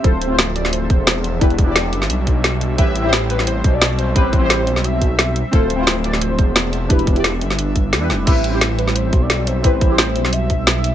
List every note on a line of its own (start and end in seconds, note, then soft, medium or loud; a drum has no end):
0.00 1.38 C4 medium
0.00 0.26 C4 loud
0.00 0.28 E4 medium
0.00 5.49 E5 medium
0.04 0.89 D1 loud
0.04 1.40 F3 medium
0.04 0.29 F4 medium
0.04 1.40 A4 medium
0.04 0.29 A4 loud
0.04 0.36 C5 loud
0.04 kick loud
0.04 closed hi-hat medium
0.22 closed hi-hat medium
0.27 1.38 C4 loud
0.27 1.39 E4 medium
0.32 1.40 F4 medium
0.32 1.41 C5 loud
0.39 snare loud
0.39 closed hi-hat medium
0.56 0.72 D5 medium
0.56 closed hi-hat medium
0.65 snare soft
0.73 1.37 C5 medium
0.73 closed hi-hat medium
0.90 1.40 E1 loud
0.90 kick loud
0.90 closed hi-hat medium
1.07 snare loud
1.07 closed hi-hat loud
1.24 closed hi-hat medium
1.40 1.94 E1 loud
1.40 5.49 G3 medium
1.40 1.63 D4 medium
1.40 2.77 D4 medium
1.40 1.65 E4 medium
1.40 1.66 G4 medium
1.40 1.66 B4 loud
1.40 kick loud
1.40 closed hi-hat medium
1.50 closed hi-hat soft
1.59 kick loud
1.59 closed hi-hat medium
1.64 2.75 D4 medium
1.64 2.76 E4 medium
1.69 2.77 G4 medium
1.69 2.78 D5 loud
1.76 snare loud
1.76 closed hi-hat medium
1.93 2.09 G1 medium
1.93 closed hi-hat medium
2.02 snare soft
2.10 2.77 B1 medium
2.10 closed hi-hat medium
2.27 kick medium
2.27 closed hi-hat medium
2.44 snare loud
2.44 closed hi-hat loud
2.61 closed hi-hat medium
2.77 3.63 A1 loud
2.77 3.00 C4 medium
2.77 6.86 C4 medium
2.77 3.02 E4 medium
2.77 3.03 G4 medium
2.77 3.03 B4 loud
2.77 3.10 E5 loud
2.77 kick loud
2.77 closed hi-hat medium
2.96 closed hi-hat medium
3.01 4.12 C4 medium
3.01 4.13 E4 medium
3.06 4.14 G4 medium
3.06 4.16 C5 loud
3.13 snare loud
3.13 closed hi-hat medium
3.30 3.38 B4 loud
3.30 closed hi-hat medium
3.39 snare soft
3.47 3.75 C5 loud
3.47 closed hi-hat medium
3.64 4.14 B1 loud
3.64 kick loud
3.64 closed hi-hat medium
3.74 3.98 D5 loud
3.82 snare loud
3.82 closed hi-hat medium
3.99 4.15 C5 medium
3.99 closed hi-hat medium
4.14 4.69 A1 loud
4.14 4.37 C4 medium
4.14 4.39 E4 medium
4.14 4.40 G4 medium
4.14 4.41 B4 loud
4.14 4.86 C5 loud
4.14 kick loud
4.14 closed hi-hat medium
4.33 kick loud
4.33 closed hi-hat medium
4.39 5.49 C4 loud
4.39 5.50 E4 medium
4.43 5.52 G4 medium
4.43 5.53 C5 loud
4.50 snare loud
4.50 closed hi-hat medium
4.67 5.43 B1 medium
4.67 closed hi-hat medium
4.76 snare soft
4.84 5.53 E5 loud
4.84 closed hi-hat medium
5.02 kick medium
5.02 closed hi-hat medium
5.19 snare loud
5.19 closed hi-hat medium
5.36 closed hi-hat medium
5.51 6.37 D1 loud
5.51 6.89 F3 medium
5.51 6.88 A3 medium
5.51 5.75 C4 loud
5.51 5.77 E4 medium
5.51 5.77 F4 medium
5.51 5.78 A4 loud
5.51 5.85 C5 loud
5.51 10.95 E5 medium
5.51 kick loud
5.51 closed hi-hat medium
5.70 closed hi-hat medium
5.76 6.86 C4 medium
5.76 6.88 E4 medium
5.80 6.89 F4 medium
5.80 6.90 C5 loud
5.87 snare loud
5.87 closed hi-hat medium
6.04 6.24 D5 medium
6.04 closed hi-hat medium
6.13 snare soft
6.21 6.90 C5 medium
6.21 closed hi-hat medium
6.39 6.89 E1 loud
6.39 kick loud
6.39 closed hi-hat medium
6.56 snare loud
6.56 closed hi-hat medium
6.73 closed hi-hat medium
6.88 7.43 E1 loud
6.88 10.95 G3 medium
6.88 7.12 D4 loud
6.88 8.26 D4 medium
6.88 7.14 E4 medium
6.88 7.14 G4 medium
6.88 7.15 B4 loud
6.88 kick loud
6.88 closed hi-hat medium
6.99 closed hi-hat soft
7.07 kick loud
7.07 closed hi-hat medium
7.13 7.98 D4 medium
7.13 8.00 E4 medium
7.13 closed hi-hat soft
7.17 8.01 G4 medium
7.17 8.02 D5 loud
7.24 snare loud
7.24 closed hi-hat medium
7.41 7.94 G1 medium
7.41 closed hi-hat medium
7.50 snare soft
7.50 closed hi-hat soft
7.59 closed hi-hat medium
7.76 kick medium
7.76 closed hi-hat medium
7.93 8.11 E2 loud
7.93 snare loud
7.93 closed hi-hat loud
8.00 8.24 D4 medium
8.00 8.25 E4 medium
8.00 8.25 G4 medium
8.00 8.26 B4 medium
8.10 8.25 E1 loud
8.10 snare soft
8.10 closed hi-hat medium
8.25 9.12 A1 loud
8.25 8.49 C4 loud
8.25 10.95 C4 medium
8.25 8.51 E4 medium
8.25 8.51 G4 medium
8.25 8.52 B4 loud
8.25 8.59 E5 loud
8.25 kick loud
8.25 closed hi-hat loud
8.25 crash medium
8.44 closed hi-hat medium
8.50 9.61 C4 medium
8.50 9.62 E4 medium
8.54 9.63 G4 medium
8.54 9.64 C5 loud
8.61 snare loud
8.61 closed hi-hat loud
8.79 8.97 B4 loud
8.79 closed hi-hat medium
8.88 snare soft
8.96 9.24 C5 loud
8.96 closed hi-hat loud
9.13 9.63 B1 loud
9.13 kick loud
9.13 closed hi-hat medium
9.22 9.49 D5 loud
9.30 snare loud
9.30 closed hi-hat loud
9.47 9.64 C5 medium
9.47 open hi-hat medium
9.63 10.17 A1 loud
9.63 9.86 C4 loud
9.63 9.88 E4 medium
9.63 9.89 G4 medium
9.63 9.89 B4 loud
9.63 10.34 C5 loud
9.63 kick loud
9.63 closed hi-hat loud
9.81 kick loud
9.81 closed hi-hat medium
9.87 10.95 C4 medium
9.87 10.95 E4 medium
9.92 10.95 G4 medium
9.92 10.95 C5 loud
9.98 snare loud
9.98 closed hi-hat loud
10.16 10.92 B1 medium
10.16 closed hi-hat medium
10.25 snare soft
10.33 10.95 E5 loud
10.33 closed hi-hat medium
10.50 kick medium
10.50 closed hi-hat medium
10.67 snare loud
10.67 closed hi-hat loud
10.84 open hi-hat medium